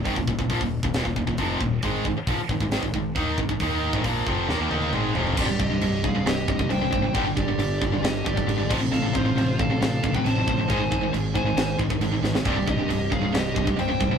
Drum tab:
CC |----------------|----------------|----------------|x---x---x---x---|
HH |o---o---o---o---|o---o---o---o---|o---o-----------|----------------|
SD |--------o-------|--------o-------|--------o-------|--------o-------|
T1 |----------------|----------------|----------oo----|----------------|
T2 |----------------|----------------|------------o---|----------------|
FT |----------------|----------------|--------------oo|----------------|
BD |oooooo-o-oooo-o-|o-o-o-oo-oo-o-oo|o--oo-o---------|o-o---o---oo--o-|

CC |x---x---x---x-x-|x---x---x---x---|x---x---x---x---|x---x---x---x---|
HH |----------------|----------------|----------------|----------------|
SD |--------o-------|--------o-------|--------o-----oo|--------o-------|
T1 |----------------|----------------|----------------|----------------|
T2 |----------------|----------------|----------------|----------------|
FT |----------------|----------------|----------------|----------------|
BD |o-o---o---oo--o-|--o---o---oo--o-|o-o---o---oo----|o-o---o---oo--o-|